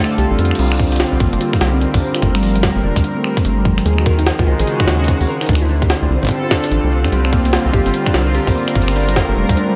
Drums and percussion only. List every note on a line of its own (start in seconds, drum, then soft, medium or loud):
0.04 finger snap medium
0.04 closed hi-hat medium
0.18 closed hi-hat medium
0.39 closed hi-hat medium
0.45 closed hi-hat medium
0.51 finger snap medium
0.51 closed hi-hat medium
0.59 closed hi-hat medium
0.59 crash medium
0.72 finger snap medium
0.80 kick loud
0.92 closed hi-hat medium
0.96 snare loud
0.96 closed hi-hat medium
1.00 closed hi-hat medium
1.06 closed hi-hat soft
1.20 kick loud
1.33 closed hi-hat medium
1.41 closed hi-hat medium
1.53 finger snap medium
1.53 kick loud
1.61 snare loud
1.81 closed hi-hat medium
1.94 kick loud
1.94 open hi-hat medium
2.15 finger snap medium
2.15 closed hi-hat medium
2.22 kick loud
2.22 closed hi-hat medium
2.35 finger snap medium
2.43 open hi-hat medium
2.55 closed hi-hat medium
2.63 kick loud
2.63 snare loud
2.63 closed hi-hat medium
2.96 kick loud
2.96 closed hi-hat medium
3.04 closed hi-hat medium
3.24 finger snap medium
3.37 kick loud
3.37 closed hi-hat medium
3.45 closed hi-hat medium
3.65 kick loud
3.78 finger snap medium
3.78 closed hi-hat medium
3.86 closed hi-hat medium
3.98 finger snap medium
4.06 kick loud
4.19 closed hi-hat medium
4.27 snare loud
4.27 closed hi-hat medium
4.39 kick loud
4.59 closed hi-hat medium
4.67 closed hi-hat medium
4.80 finger snap medium
4.80 kick loud
4.88 snare loud
5.04 closed hi-hat medium
5.08 kick loud
5.08 closed hi-hat medium
5.21 open hi-hat medium
5.41 finger snap medium
5.41 closed hi-hat medium
5.46 closed hi-hat soft
5.49 kick loud
5.49 closed hi-hat medium
5.53 finger snap medium
5.53 closed hi-hat soft
5.82 kick loud
5.82 closed hi-hat medium
5.90 snare loud
5.90 closed hi-hat medium
6.23 kick medium
6.25 kick medium
6.27 kick medium
6.27 closed hi-hat medium
6.29 kick loud
6.29 closed hi-hat medium
6.51 finger snap medium
6.51 kick loud
6.51 snare loud
6.64 closed hi-hat medium
6.71 closed hi-hat medium
7.04 finger snap medium
7.04 closed hi-hat medium
7.12 closed hi-hat soft
7.25 finger snap medium
7.33 kick loud
7.45 closed hi-hat medium
7.53 snare loud
7.53 closed hi-hat medium
7.74 kick loud
7.86 closed hi-hat medium
7.94 closed hi-hat medium
8.06 finger snap medium
8.06 kick loud
8.14 snare loud
8.35 closed hi-hat soft
8.47 kick loud
8.47 open hi-hat medium
8.68 finger snap medium
8.68 closed hi-hat medium
8.76 kick loud
8.82 closed hi-hat medium
8.88 finger snap medium
8.96 open hi-hat medium
9.09 closed hi-hat medium
9.16 kick loud
9.16 snare loud
9.16 closed hi-hat medium
9.49 kick loud
9.49 closed hi-hat medium
9.57 closed hi-hat medium